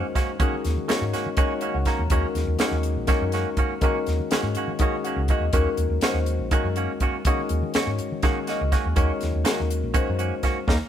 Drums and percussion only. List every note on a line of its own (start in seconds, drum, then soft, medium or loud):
0.15 kick medium
0.15 snare soft
0.15 closed hi-hat medium
0.40 kick loud
0.40 closed hi-hat medium
0.65 snare soft
0.65 closed hi-hat medium
0.89 snare loud
0.89 closed hi-hat medium
1.14 snare soft
1.14 closed hi-hat medium
1.37 kick loud
1.37 closed hi-hat medium
1.61 closed hi-hat medium
1.85 kick medium
1.85 snare soft
1.85 closed hi-hat medium
2.10 kick loud
2.10 closed hi-hat medium
2.35 snare soft
2.35 closed hi-hat soft
2.59 snare loud
2.59 closed hi-hat medium
2.83 closed hi-hat medium
3.07 kick loud
3.07 snare soft
3.07 closed hi-hat medium
3.32 snare soft
3.32 closed hi-hat soft
3.57 kick medium
3.57 closed hi-hat medium
3.81 kick loud
3.81 closed hi-hat medium
4.07 snare soft
4.07 closed hi-hat soft
4.31 snare medium
4.31 closed hi-hat medium
4.55 closed hi-hat medium
4.79 kick medium
4.79 closed hi-hat medium
5.05 closed hi-hat medium
5.28 kick medium
5.28 closed hi-hat medium
5.53 kick loud
5.53 closed hi-hat medium
5.77 closed hi-hat medium
6.01 snare medium
6.01 closed hi-hat medium
6.26 closed hi-hat medium
6.51 kick medium
6.51 closed hi-hat medium
6.76 closed hi-hat medium
7.00 kick medium
7.00 closed hi-hat medium
7.25 kick loud
7.25 closed hi-hat medium
7.49 closed hi-hat medium
7.74 snare loud
7.74 closed hi-hat medium
7.99 closed hi-hat medium
8.22 kick loud
8.22 snare soft
8.22 closed hi-hat medium
8.47 snare soft
8.47 closed hi-hat medium
8.72 kick medium
8.72 snare soft
8.72 closed hi-hat medium
8.96 kick loud
8.96 closed hi-hat medium
9.21 snare soft
9.21 closed hi-hat soft
9.45 snare loud
9.45 closed hi-hat medium
9.70 closed hi-hat medium
9.94 kick loud
9.94 closed hi-hat medium
10.19 closed hi-hat medium
10.43 kick medium
10.43 snare soft
10.43 closed hi-hat medium
10.68 kick medium
10.68 snare medium